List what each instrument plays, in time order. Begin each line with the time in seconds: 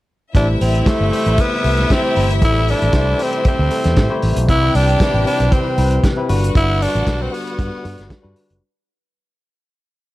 0.34 fingered electric bass A1, tonewheel organ C3 E3 G3 A3 E4, tine electric piano A3 E4 G4 C5, tenor saxophone D4, string section E4 E5, kick, closed hi-hat
0.61 fingered electric bass A1, tenor saxophone C4, open hi-hat
0.75 closed hi-hat
0.86 tine electric piano A3 E4 G4 C5, tenor saxophone A3, kick, snare, closed hi-hat
1.01 fingered electric bass G1
1.11 tine electric piano A3 E4 G4 C5, open hi-hat
1.25 fingered electric bass A1, closed hi-hat
1.38 tenor saxophone B3, kick, closed hi-hat
1.63 fingered electric bass C2, tine electric piano A3 E4 G4 A4, open hi-hat
1.77 snare, closed hi-hat
1.90 tenor saxophone C4, kick, snare, closed hi-hat
2.03 tine electric piano A3 E4 G4 C5
2.16 fingered electric bass G1, open hi-hat
2.30 closed hi-hat
2.41 fingered electric bass A1, tine electric piano A3 E4 G4 A4, tenor saxophone E4, kick, closed hi-hat
2.68 tenor saxophone D4, open hi-hat
2.81 fingered electric bass A1, closed hi-hat
2.93 fingered electric bass C2, tine electric piano A3 E4 G4 C5, kick, snare, closed hi-hat
3.18 tine electric piano A3 E4 G4 C5, tenor saxophone C4, open hi-hat
3.33 closed hi-hat
3.45 tenor saxophone C4, kick, closed hi-hat
3.59 fingered electric bass D2
3.70 tine electric piano A3 E4 G4 A4, open hi-hat
3.84 fingered electric bass E2, snare, closed hi-hat
3.96 fingered electric bass A2, kick, snare, closed hi-hat
4.10 tine electric piano A3 E4 G4 C5
4.22 fingered electric bass A1, open hi-hat
4.36 fingered electric bass B1, closed hi-hat
4.47 fingered electric bass C2, tine electric piano C3 C4 E4 B4, tenor saxophone E4, string section G4 G5, tonewheel organ B4, kick, closed hi-hat
4.75 fingered electric bass C2, tenor saxophone D4, open hi-hat
4.89 closed hi-hat
4.99 tine electric piano C3 C4 E4 B4, kick, snare, closed hi-hat
5.14 fingered electric bass A1
5.25 tine electric piano C3 C4 E4 B4, tenor saxophone D4, open hi-hat
5.40 fingered electric bass B1, closed hi-hat
5.52 tenor saxophone C4, kick, closed hi-hat
5.77 fingered electric bass C2, tine electric piano C3 C4 E4 B4, open hi-hat
5.91 closed hi-hat
6.04 kick, snare, closed hi-hat
6.16 tine electric piano C3 C4 E4 B4
6.28 fingered electric bass G1, tonewheel organ D3 G3 F#4, tine electric piano G3 D4 F#4 B4, string section F#4 F#5, open hi-hat
6.44 closed hi-hat
6.55 fingered electric bass G1, tenor saxophone E4, kick, closed hi-hat
6.82 tenor saxophone D4, open hi-hat
6.95 fingered electric bass A1, closed hi-hat
7.05 fingered electric bass B1, tine electric piano G3 D4 F#4 B4, kick, snare, closed hi-hat
7.21 tenor saxophone C4
7.31 tine electric piano G3 D4 F#4 B4, tenor saxophone B3, open hi-hat
7.47 closed hi-hat
7.59 fingered electric bass G2, kick, closed hi-hat
7.82 fingered electric bass G2, tine electric piano G3 D4 F#4 B4, open hi-hat
7.98 fingered electric bass G1, snare, closed hi-hat
8.10 kick, snare, closed hi-hat
8.22 fingered electric bass G2, tine electric piano G3 D4 F#4 B4
8.36 open hi-hat
8.50 fingered electric bass F#1, closed hi-hat